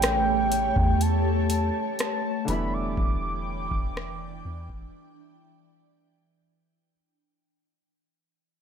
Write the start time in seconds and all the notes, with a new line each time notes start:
Already playing: A1 C#3 E3 G3 A3 E4 G4 C#5 G5
0.02 cross-stick, closed hi-hat
0.52 closed hi-hat
0.76 E2, kick
1.01 A5, closed hi-hat
1.50 closed hi-hat
1.99 A5, cross-stick, closed hi-hat
2.45 E1 D3 E3 G3 G5, closed hi-hat
2.49 E3 B3 D4 E4 B5
2.74 D6
2.97 E1, kick
3.71 E1, kick
3.97 cross-stick
4.45 E2
4.70 E1, kick